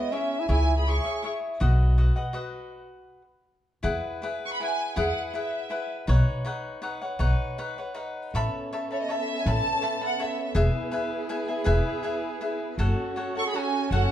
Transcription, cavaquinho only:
Already playing: E4 G#4 C#5 E5
0.12 E4 G#4 C#5 E5
0.49 E4 G#4 C#5 E5
0.86 E4 G#4 C#5 E5
1.05 G#4 C#5 E5
1.22 E4 G#4 C#5 E5
1.60 F#4 B4 D#5 F#5
1.98 F#4 B4 D#5 F#5
2.16 B4 D#5 F#5
2.33 F#4 B4 D#5 F#5
3.83 E4 G#4 B4 F#5
4.22 E4 G#4 B4 F#5
4.60 E4 G#4 B4 F#5
4.96 E4 G#4 B4 F#5
5.34 E4 G#4 B4 F#5
5.70 E4 G#4 B4 F#5
6.07 D#4 B4 C#5 F#5
6.45 D#4 B4 C#5 F#5
6.82 D#4 B4 C#5 F#5
7.02 B4 C#5 F#5
7.19 D#4 B4 C#5 F#5
7.58 D#4 B4 C#5 F#5
7.78 B4 C#5 F#5
7.94 D#4 B4 C#5 F#5
8.35 C#5 E5 A5 B5
8.73 C#5 E5 A5 B5
8.91 E5 A5 B5
9.09 C#5 E5 A5 B5
9.46 C#5 E5 A5 B5
9.81 C#5 E5 A5 B5
10.01 E5 A5 B5
10.19 C#5 E5 A5 B5
10.55 G#4 B4 E5 G#5
10.91 G#4 B4 E5 G#5
11.29 G#4 B4 E5 G#5
11.48 B4 E5 G#5
11.64 G#4 B4 E5 G#5
12.03 G#4 B4 E5 G#5
12.41 G#4 B4 E5 G#5
12.79 F#4 A4 C#5 F#5
13.16 F#4 A4 C#5 F#5
13.35 A4 C#5 F#5
13.54 F#4 A4 C#5 F#5
13.91 F#4 A4 C#5 F#5

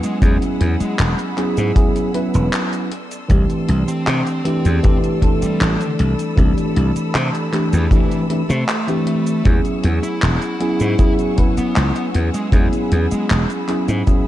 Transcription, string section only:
Already playing: G#4 F#5 C#6 E6
0.22 B5
2.91 A4 D5 C6
5.99 B5
9.45 G#4 F#5 C#6
12.53 B5

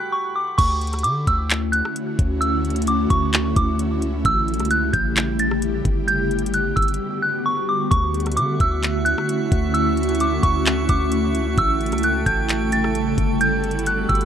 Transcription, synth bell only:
Already playing: F#6
0.12 C#6
0.36 D6
0.58 C#6
1.03 D6
1.28 E6
1.72 F#6
2.41 E6
2.88 D6
3.10 C#6
3.56 D6
4.26 E6
4.71 F#6
4.93 G6
5.40 A6
6.08 G6
6.54 F#6
6.76 E6
7.22 F#6
7.46 C#6
7.69 D6
7.91 C#6
8.37 D6
8.61 E6
9.05 F#6
9.74 E6
10.21 D6
10.43 C#6
10.89 D6
11.58 E6
12.04 F#6
12.26 G6
12.73 A6
13.41 G6
13.87 F#6
14.09 E6

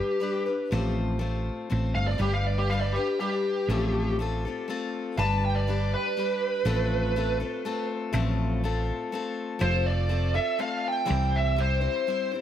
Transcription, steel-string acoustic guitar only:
Already playing: G3 D4 G4 B4
0.20 G3 D4 G4 B4
0.46 D4 G4 B4
0.71 A2 F3 A3 C4 F4 C5
1.19 A3 C4 F4 C5
1.70 A3 C4 F4 C5
2.18 G3 D4 G4 B4
2.70 G3 D4 G4 B4
2.96 D4 G4 B4
3.20 G3 D4 G4 B4
3.69 A2 F3 A3 C4 F4 A4
4.19 A3 C4 F4 A4
4.45 A3 C4 F4 A4
4.68 A3 C4 F4 A4
5.17 G3 D4 G4 B4
5.67 G3 D4 G4 B4
6.17 G3 D4 G4 B4
6.65 A2 F3 A3 C4 F4 A4
7.16 A3 C4 F4 A4
7.40 A3 C4 F4 A4
7.65 A3 C4 F4 A4
8.13 A2 F3 A3 C4 F4 A4
8.64 A3 C4 F4 A4
9.12 A3 C4 F4 A4
9.59 F3 A3 C4 F4 A4
10.09 A3 C4 F4 A4
10.34 C4 F4 A4
10.59 A3 C4 F4 A4
11.05 C3 E3 G3 C4 E4 C5
11.56 G3 C4 E4 C5
11.81 G3 C4 E4 C5
12.07 G3 C4 E4 C5
12.32 G3 C4 E4 C5

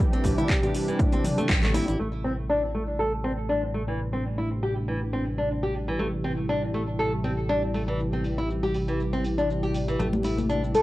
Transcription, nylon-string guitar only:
0.13 C4
0.38 E4
0.63 G4
0.88 E3
1.13 C4
1.38 A3
1.63 A3
1.74 E4
1.88 E4
1.99 A3
2.24 C4
2.49 D4
2.74 A3
2.99 A4
3.24 C4
3.49 D4
3.74 A3
3.88 E3
4.13 C4
4.38 E4
4.63 G4
4.88 E3
5.13 C4
5.38 D4
5.63 G4
5.88 E3
5.99 A3
6.24 C4
6.49 D4
6.74 A3
6.99 A4
7.24 C4
7.49 D4
7.74 A3
7.88 E3
8.13 C4
8.38 E4
8.63 G4
8.88 E3
9.13 C4
9.38 D4
9.63 G4
9.88 E3
9.99 A3
10.24 E4
10.49 D4
10.74 A3

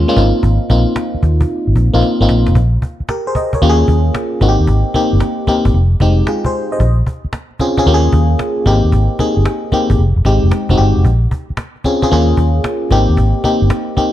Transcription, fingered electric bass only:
0.16 G#1
0.43 G#1
0.70 A#1
1.14 muted fingered electric bass stroke
1.23 D#2
1.67 G#1
1.76 A#1
1.94 A#1
2.20 G#1
2.29 A#1
2.47 F1
2.55 A#1
3.00 muted fingered electric bass stroke
3.62 D#2
3.88 D#2
4.41 G#1
4.59 D#2
4.68 G#1
5.13 G1
5.47 muted fingered electric bass stroke
5.65 G#1
5.74 F1
6.00 F1
6.80 A#1
7.25 muted fingered electric bass stroke
7.86 D#2
8.13 D#2
8.66 G#1
8.84 D#2
8.93 G#1
9.37 G1
9.72 muted fingered electric bass stroke
9.90 G#1
9.99 F1
10.16 F1
10.25 G#1
10.43 F1
10.69 F1
10.79 G1
10.96 F1
11.05 A#1
11.50 muted fingered electric bass stroke
12.12 D#2
12.37 D#2
12.91 G#1
13.09 D#2
13.17 G#1
13.62 G1
13.97 muted fingered electric bass stroke

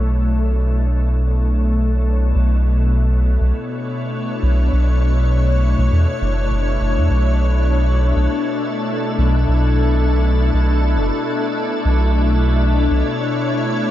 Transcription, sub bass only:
Already playing: B1
2.35 B1
3.41 B1
4.43 B1
4.73 B1
5.78 B1
5.92 E2
6.21 F#1
6.51 F#1
6.81 F#1
6.97 E2
7.10 B1
8.16 B1
9.18 B1
9.48 B1
10.53 B1
10.96 F#1
11.85 B1
12.91 B1

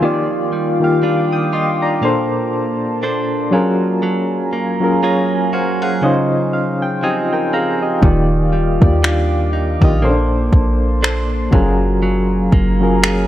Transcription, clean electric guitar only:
Already playing: F3 C4 D#4
0.03 D#3
0.53 G3
1.03 G3 D4 F4
1.53 F4
2.03 A#3
3.03 D4 A4 C5
3.53 F#3
4.03 F#3
4.53 A#3
5.03 A#3 F4 G#4
5.53 F#4
5.82 G#4
6.03 C#3
7.03 F3 C4 D#4
7.53 C4
8.03 D#3
8.53 G3
9.03 G3 D4 F4
9.53 D#4
9.82 F4
10.02 A#3
11.03 D4 A4 C5
11.53 F#3
12.03 F#3
12.53 A#3
13.03 A#3 F4 G#4

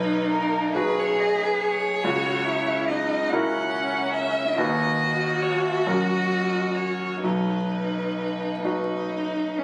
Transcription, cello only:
Already playing: D#4
0.73 G#4
2.03 F#4
2.44 E4
2.89 D#4
3.30 C#4
4.56 F#4
7.23 D#4
8.63 D#4
9.59 C#4

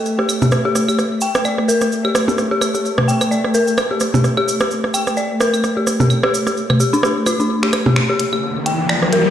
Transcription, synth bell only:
0.19 G4
0.42 G4
0.65 G4
0.88 G4
1.22 G5
1.45 D5
1.68 A#4
2.05 G4
2.28 G4
2.51 G4
2.75 G4
3.08 G5
3.31 D5
3.54 A#4
3.91 G4
4.14 G4
4.37 G4
4.61 G4
4.94 G5
5.17 D5
5.40 A#4
5.77 G4
6.00 G4
6.23 G4
6.47 G4
6.80 G4
6.93 D4
7.03 G4
7.27 F4
7.40 D4
7.63 G4
7.86 G4
8.10 G4
8.33 G4
8.66 G5
8.89 D5
9.13 A#4

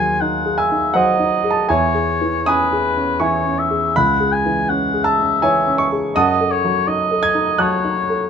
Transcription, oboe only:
Already playing: G#5
0.21 F#5
0.59 E5
0.96 D#5
1.69 C#5
2.49 B4
3.22 C#5
3.59 E5
3.96 F#5
4.32 G#5
4.69 F#5
5.04 E5
6.15 D#5
6.51 C#5
6.88 D#5
7.60 C#5

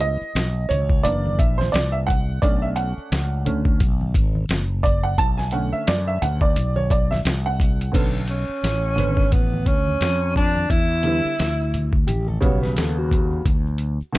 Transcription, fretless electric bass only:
Already playing: C#2
0.21 muted fretless electric bass stroke
0.35 B1
0.70 C#2
1.05 F#1
1.39 A#1
1.74 C2
2.43 B1
2.98 muted fretless electric bass stroke
3.12 C#2
3.46 D2
3.81 B1
4.14 G#1
4.49 F#1
5.18 B1
5.88 F#2
6.22 D2
6.57 B1
7.25 C2
7.94 B1
8.63 A1
8.98 G#1
9.32 A1
9.66 D2
10.01 F2
10.70 E2
11.25 muted fretless electric bass stroke
11.40 D2
12.09 A1
12.42 B1
12.78 D#2
13.45 D2
14.01 muted fretless electric bass stroke

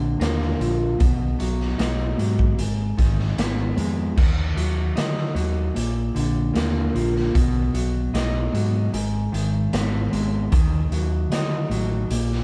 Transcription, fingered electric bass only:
Already playing: A#1
0.20 D#2
0.60 A#1
1.01 B1
1.40 B1
1.79 B1
2.18 G#2
2.58 G#1
2.99 G#1
3.38 G#1
3.77 F2
4.18 D#2
4.56 D#2
4.97 D3
5.35 D#2
5.76 A#1
6.16 A#1
6.55 D#2
6.95 A#1
7.35 B1
7.74 B1
8.13 B1
8.53 G#2
8.93 G#1
9.33 G#1
9.73 G#1
10.13 G#1
10.53 D#2
10.90 D#2
11.30 D3
11.69 A1
12.10 A#1

